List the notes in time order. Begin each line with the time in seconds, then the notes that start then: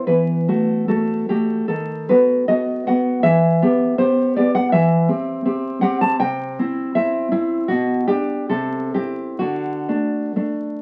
0.07 E3 B4
0.48 A3 F#4
0.88 A3 F#4 A4
1.29 A3 F#4 G4
1.68 D#3 A4
2.09 B3 F#4 B4
2.48 B3 F#4 D#5
2.87 B3 F#4 F#5
3.23 E3 E5
3.62 B3 G4
3.98 B3 G4 C5
4.36 B3 G4 D5
4.55 F#5
4.72 E3 E5
5.08 C4 G4
5.45 C4 G4
5.81 C4 G4 F#5
6.01 A5
6.20 C3 G5
6.59 C4 E4
6.95 C4 E4 E5
7.32 C4 E4
7.68 B2 F#4
8.08 D4 G4
8.49 C3 A4
8.94 C4 E4 G4
9.39 D3 F#4
9.88 A3 D4
10.36 A3 D4